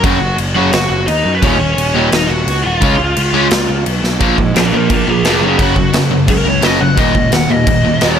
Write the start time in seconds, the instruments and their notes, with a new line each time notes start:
0.03 picked electric bass F#1, distorted electric guitar F#2 C#3 F#3, lead electric guitar F#4 F#5, kick, crash
0.20 picked electric bass F#1
0.38 picked electric bass F#1, crash
0.55 distorted electric guitar F#2 C#3 F#3, lead electric guitar F#4 F#5
0.72 picked electric bass F#1, lead electric guitar F#4 F#5, snare, crash
0.90 picked electric bass F#1
1.07 picked electric bass D#2, lead electric guitar D#4 D#5, crash
1.25 picked electric bass F#2
1.34 lead electric guitar B4
1.42 picked electric bass D#1, distorted electric guitar D#2 A#2 D#3, lead electric guitar C#4 C#5, kick, crash
1.59 picked electric bass D#1
1.76 picked electric bass D#1, crash
1.95 distorted electric guitar D#2 A#2 D#3, lead electric guitar C#4 C#5
2.12 picked electric bass D#1, lead electric guitar D#4 D#5, snare, crash
2.28 picked electric bass D#1, lead electric guitar F#4 F#5
2.47 picked electric bass C#2, crash
2.64 picked electric bass D#1, lead electric guitar F4 F5
2.81 picked electric bass C#2, distorted electric guitar C#3 G#3 C#4, kick, crash
2.99 picked electric bass C#2
3.17 picked electric bass C#2, crash
3.33 distorted electric guitar C#3 G#3 C#4
3.51 picked electric bass C#2, snare, crash
3.69 picked electric bass C#2
3.86 picked electric bass B1, crash
4.03 picked electric bass B1, snare
4.20 picked electric bass A#1, distorted electric guitar A#2 F3 A#3, kick, crash
4.37 picked electric bass G#2, distorted electric guitar A#2 F3, kick
4.56 picked electric bass A#1, distorted electric guitar A#2 F3, lead electric guitar D4 A#4, snare, crash
4.74 picked electric bass A#2, distorted electric guitar A#2 F3, lead electric guitar D4 A#4
4.90 picked electric bass A#1, distorted electric guitar A#2 F3, lead electric guitar D4 A#4, kick, crash
5.07 picked electric bass A#1, distorted electric guitar A#2 F3, lead electric guitar F4 G#4
5.23 picked electric bass F1, distorted electric guitar A#2 F3 A#3, lead electric guitar F4, snare, crash
5.28 lead electric guitar G#4
5.41 picked electric bass F#1, distorted electric guitar F#2 C#3 F#3
5.45 lead electric guitar D#4 G#4
5.59 picked electric bass F#1, distorted electric guitar F#2 C#3 F#3, lead electric guitar F#4, kick, crash
5.76 picked electric bass F#1, distorted electric guitar F#2 C#3, kick
5.92 picked electric bass F#1, distorted electric guitar F#2 C#3, snare, crash
6.11 distorted electric guitar F#2 C#3
6.28 picked electric bass C#2, distorted electric guitar F#2 C#3, lead electric guitar A#4, kick, crash
6.45 picked electric bass C#2, distorted electric guitar F#2 C#3, lead electric guitar C#5
6.62 picked electric bass F#1, distorted electric guitar F#2 C#3 F#3, lead electric guitar D#5, snare, crash
6.79 picked electric bass F#1, distorted electric guitar F#2 C#3, lead electric guitar F#5
6.97 picked electric bass D#1, distorted electric guitar D#2 A#2 D#3, lead electric guitar D#5, kick, crash
7.15 picked electric bass C#2, distorted electric guitar D#2 A#2, kick
7.32 picked electric bass D#1, distorted electric guitar D#2 A#2, lead electric guitar F#5, snare, crash
7.49 picked electric bass D#2, distorted electric guitar D#2 A#2, lead electric guitar D#5
7.67 picked electric bass D#1, distorted electric guitar D#2 A#2, kick, crash
7.84 picked electric bass D#1, distorted electric guitar D#2 A#2
8.01 picked electric bass D#1, distorted electric guitar D#2 A#2 D#3, snare, crash